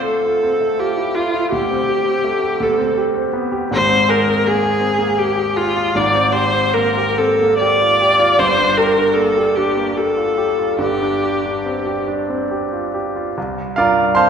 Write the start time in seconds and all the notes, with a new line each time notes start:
Already playing: D2 C4 F4
0.05 A3 A4
0.26 F4
0.43 C4
0.61 A3
0.79 F4 G4
0.97 E4
1.15 F4
1.34 E4
1.51 D2 G4
1.71 C4
1.89 G4
2.06 C4
2.24 A3
2.42 G4
2.60 D2 A4
2.78 C4
2.97 G4
3.15 C4
3.33 B3
3.52 G4
3.71 G#1 G#2 C5
3.89 C4
4.09 G#4 A#4
4.27 C4
4.44 A#3 G#4
4.63 G#4
4.81 C4
4.99 A#3
5.18 G4 G#4
5.36 G4
5.56 F4 G#4
5.76 F4
5.95 G#1 G#2 D5
6.15 C4
6.32 G4 C5
6.54 C4
6.74 A#3 A#4
6.97 G4
7.18 C4 A4
7.41 A#3
7.58 G4 D5
7.81 F4
8.01 G4
8.19 F4
8.38 G1 G2 C5
8.58 D4
8.77 G4 A#4
8.97 D4
9.14 A#3 A4
9.37 G4
9.56 D4 G4
9.77 A#3
9.96 G4 A4
10.17 F4
10.38 G4
10.59 F4
10.78 G1 G2 G4
11.02 D4
11.23 G4
11.46 D4
11.66 C4
11.86 G4
12.08 D4
12.29 C4
12.51 G4
12.73 F4
12.94 G4
13.16 F4
13.38 C2
13.76 G2 F4 A#4 D5 F5
14.15 C4 C5 F5 A5 C6